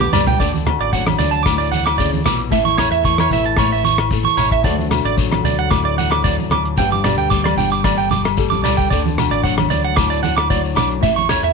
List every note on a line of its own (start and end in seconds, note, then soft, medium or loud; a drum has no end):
0.00 0.10 B1 medium
0.00 0.37 G2 medium
0.00 0.40 B3 soft
0.00 0.37 D4 medium
0.00 0.11 D6 medium
0.00 high tom soft
0.00 high conga medium
0.12 0.36 C#2 medium
0.12 0.37 G3 medium
0.12 0.24 D5 medium
0.12 mid tom medium
0.12 low conga medium
0.12 low agogo medium
0.12 shekere loud
0.27 0.37 G5 medium
0.27 floor tom medium
0.27 low conga medium
0.27 shekere soft
0.40 0.76 D2 loud
0.40 1.98 D3 medium
0.40 1.20 D4 medium
0.40 0.51 D5 medium
0.40 kick medium
0.40 closed hi-hat soft
0.40 shekere loud
0.54 high conga medium
0.54 shekere soft
0.67 2.53 F#4 medium
0.67 cross-stick medium
0.67 closed hi-hat soft
0.67 low conga medium
0.67 low agogo medium
0.79 1.14 A1 medium
0.79 0.90 D5 medium
0.79 closed hi-hat soft
0.93 2.50 F#3 medium
0.93 1.04 F#5 medium
0.93 kick medium
0.93 closed hi-hat soft
0.93 shekere medium
1.07 cross-stick medium
1.07 high conga medium
1.07 low agogo medium
1.07 shekere soft
1.18 2.26 D2 medium
1.18 2.50 D4 medium
1.18 1.30 D5 medium
1.18 closed hi-hat soft
1.18 low conga medium
1.18 shekere medium
1.31 1.42 A5 medium
1.31 closed hi-hat soft
1.43 2.49 A2 medium
1.43 1.55 D6 medium
1.43 kick medium
1.43 cross-stick medium
1.43 closed hi-hat soft
1.43 low agogo medium
1.43 shekere loud
1.58 1.69 D5 medium
1.58 shekere soft
1.72 1.83 F#5 medium
1.72 closed hi-hat soft
1.72 high conga medium
1.72 shekere medium
1.86 1.96 D6 medium
1.86 cross-stick medium
1.86 closed hi-hat soft
1.86 low agogo medium
1.98 2.25 C#3 medium
1.98 2.09 D5 medium
1.98 kick medium
1.98 closed hi-hat soft
1.98 shekere medium
2.13 high conga medium
2.13 shekere soft
2.24 2.52 A#1 medium
2.24 2.52 B2 medium
2.24 2.37 D6 medium
2.24 cross-stick medium
2.24 closed hi-hat soft
2.24 low conga medium
2.24 low agogo medium
2.24 shekere medium
2.39 closed hi-hat soft
2.50 2.88 A1 loud
2.50 3.57 A2 medium
2.50 2.65 C#4 medium
2.50 2.63 E5 medium
2.50 kick medium
2.50 closed hi-hat soft
2.50 shekere medium
2.65 3.31 E4 soft
2.65 2.75 C#6 medium
2.65 high conga medium
2.65 shekere soft
2.78 4.11 A4 soft
2.78 2.89 C#5 medium
2.78 cross-stick medium
2.78 closed hi-hat soft
2.78 low conga medium
2.78 low agogo medium
2.78 shekere medium
2.91 3.26 E2 medium
2.91 3.02 E5 medium
2.91 closed hi-hat soft
3.05 4.10 E3 medium
3.05 3.16 C#6 medium
3.05 kick medium
3.05 closed hi-hat soft
3.05 shekere medium
3.18 3.30 C#5 medium
3.18 cross-stick medium
3.18 high conga medium
3.18 low agogo medium
3.18 shekere soft
3.29 4.25 A1 medium
3.29 3.43 E5 medium
3.29 closed hi-hat soft
3.29 low conga medium
3.29 shekere medium
3.34 4.38 E4 medium
3.45 3.56 A5 medium
3.45 closed hi-hat soft
3.57 4.62 A2 medium
3.57 3.70 C#5 medium
3.57 kick medium
3.57 cross-stick medium
3.57 closed hi-hat soft
3.57 low agogo medium
3.57 shekere medium
3.72 3.82 E5 medium
3.72 shekere soft
3.84 3.96 C#6 medium
3.84 closed hi-hat medium
3.84 high conga medium
3.84 shekere medium
3.98 cross-stick medium
3.98 closed hi-hat soft
3.98 low agogo medium
4.11 4.62 A4 medium
4.11 muted nylon-string guitar stroke medium
4.11 kick medium
4.11 closed hi-hat soft
4.11 shekere medium
4.23 4.35 C#6 medium
4.23 high conga medium
4.23 shekere soft
4.37 4.64 A1 medium
4.37 4.62 E4 medium
4.37 4.49 C#5 medium
4.37 closed hi-hat soft
4.37 low conga medium
4.37 low agogo medium
4.37 shekere medium
4.51 4.62 E5 medium
4.51 kick medium
4.51 closed hi-hat soft
4.64 5.00 D2 loud
4.64 6.74 D3 medium
4.64 5.15 F#3 medium
4.64 6.78 A3 medium
4.64 5.44 D4 medium
4.64 4.90 F#4 medium
4.64 4.76 D5 medium
4.64 kick medium
4.64 closed hi-hat soft
4.64 shekere medium
4.78 high conga soft
4.78 shekere soft
4.91 6.24 F#4 medium
4.91 cross-stick medium
4.91 closed hi-hat soft
4.91 low conga medium
4.91 low agogo medium
4.91 shekere medium
5.04 5.39 A1 medium
5.04 5.15 D5 medium
5.04 closed hi-hat soft
5.17 6.23 F#3 medium
5.17 kick medium
5.17 closed hi-hat soft
5.17 shekere medium
5.31 cross-stick medium
5.31 high conga medium
5.31 low agogo medium
5.31 shekere soft
5.43 6.39 D2 medium
5.43 6.52 D4 medium
5.43 5.56 D5 medium
5.43 closed hi-hat soft
5.43 low conga medium
5.43 shekere medium
5.59 5.68 F#5 medium
5.59 closed hi-hat soft
5.70 6.74 A2 soft
5.70 5.82 D6 medium
5.70 kick medium
5.70 cross-stick medium
5.70 closed hi-hat soft
5.70 low agogo medium
5.70 shekere medium
5.85 5.95 D5 medium
5.98 6.09 F#5 medium
5.98 closed hi-hat soft
5.98 high conga medium
5.98 shekere medium
6.11 6.21 D6 medium
6.11 cross-stick medium
6.11 closed hi-hat soft
6.11 low agogo medium
6.24 6.75 F#3 medium
6.24 6.78 F#4 medium
6.24 6.35 D5 medium
6.24 kick medium
6.24 closed hi-hat soft
6.24 shekere medium
6.39 high conga medium
6.39 shekere soft
6.49 6.79 D2 medium
6.49 6.79 D4 medium
6.49 6.62 D6 medium
6.49 cross-stick medium
6.49 closed hi-hat soft
6.49 low conga medium
6.49 low agogo medium
6.65 closed hi-hat soft
6.77 7.14 G1 medium
6.77 8.87 G2 medium
6.77 7.31 G3 soft
6.77 8.88 B3 medium
6.77 7.58 D4 medium
6.77 7.04 G4 medium
6.77 6.89 G5 medium
6.77 kick medium
6.77 closed hi-hat soft
6.77 shekere loud
6.92 7.02 D6 medium
6.92 high conga soft
6.92 shekere soft
7.04 8.38 G4 medium
7.04 7.15 D5 medium
7.04 cross-stick medium
7.04 closed hi-hat soft
7.04 low conga medium
7.04 low agogo medium
7.04 shekere medium
7.17 7.52 D2 medium
7.17 7.28 G5 medium
7.17 closed hi-hat soft
7.17 shekere soft
7.30 8.36 G3 medium
7.30 7.41 D6 medium
7.30 kick medium
7.30 closed hi-hat soft
7.30 shekere medium
7.44 7.54 D5 medium
7.44 cross-stick medium
7.44 high conga medium
7.44 low agogo medium
7.44 shekere soft
7.55 8.63 G1 medium
7.55 8.64 D4 medium
7.55 7.69 G5 medium
7.55 closed hi-hat soft
7.55 low conga medium
7.55 shekere medium
7.72 7.82 D6 medium
7.72 closed hi-hat soft
7.72 shekere soft
7.84 8.88 D3 soft
7.84 7.95 D5 medium
7.84 kick medium
7.84 cross-stick medium
7.84 closed hi-hat soft
7.84 high conga soft
7.84 low agogo medium
7.84 shekere medium
7.98 8.08 G5 medium
7.98 shekere soft
8.11 8.22 D6 medium
8.11 closed hi-hat medium
8.11 high conga medium
8.11 low conga medium
8.11 shekere medium
8.25 cross-stick medium
8.25 closed hi-hat soft
8.25 low agogo medium
8.25 shekere soft
8.37 8.87 G3 medium
8.37 8.88 A4 medium
8.37 kick medium
8.37 closed hi-hat soft
8.37 shekere medium
8.50 8.60 D6 medium
8.50 high conga medium
8.50 shekere soft
8.63 8.90 C#2 medium
8.63 8.88 D4 medium
8.63 8.75 D5 medium
8.63 closed hi-hat soft
8.63 low conga medium
8.63 low agogo medium
8.63 shekere medium
8.77 8.87 G5 medium
8.77 kick medium
8.77 closed hi-hat soft
8.77 shekere soft
8.90 9.27 D2 medium
8.90 11.01 D3 medium
8.90 9.71 D4 medium
8.90 9.01 D5 medium
8.90 kick medium
8.90 closed hi-hat soft
8.90 shekere medium
9.06 high conga medium
9.06 shekere soft
9.18 10.49 F#4 soft
9.18 cross-stick medium
9.18 closed hi-hat soft
9.18 low conga medium
9.18 low agogo medium
9.18 shekere medium
9.30 9.65 A1 medium
9.30 9.41 D5 medium
9.30 closed hi-hat soft
9.44 10.48 F#3 medium
9.44 9.55 F#5 medium
9.44 kick medium
9.44 closed hi-hat soft
9.44 shekere medium
9.58 cross-stick medium
9.58 high conga medium
9.58 low agogo medium
9.58 shekere soft
9.70 10.77 D2 medium
9.70 10.75 D4 medium
9.70 9.81 D5 medium
9.70 closed hi-hat medium
9.70 low conga medium
9.70 shekere medium
9.84 9.94 F#5 medium
9.84 closed hi-hat soft
9.96 10.99 A2 medium
9.96 10.08 D6 medium
9.96 kick medium
9.96 cross-stick medium
9.96 closed hi-hat soft
9.96 low agogo medium
9.96 shekere medium
10.10 10.20 D5 medium
10.10 shekere soft
10.23 10.34 F#5 medium
10.23 closed hi-hat soft
10.23 high conga medium
10.23 shekere medium
10.37 10.47 D6 medium
10.37 cross-stick medium
10.37 closed hi-hat soft
10.37 low agogo medium
10.49 11.00 F#3 medium
10.49 11.03 F#4 medium
10.49 10.61 D5 medium
10.49 kick medium
10.49 closed hi-hat soft
10.49 shekere medium
10.65 shekere soft
10.75 11.03 B1 medium
10.75 11.00 D4 medium
10.75 10.88 D6 medium
10.75 cross-stick medium
10.75 closed hi-hat soft
10.75 low conga medium
10.75 low agogo medium
10.75 shekere medium
10.91 closed hi-hat soft
11.01 11.39 A1 medium
11.01 11.53 A2 medium
11.01 11.16 C#4 medium
11.01 11.14 E5 medium
11.01 kick medium
11.01 closed hi-hat soft
11.01 shekere medium
11.16 11.53 E4 soft
11.16 11.27 C#6 medium
11.16 high conga medium
11.16 shekere soft
11.29 11.53 A4 medium
11.29 11.41 C#5 medium
11.29 cross-stick medium
11.29 closed hi-hat soft
11.29 low conga medium
11.29 low agogo medium
11.29 shekere medium
11.43 11.53 E2 medium
11.43 11.53 E5 medium
11.43 closed hi-hat soft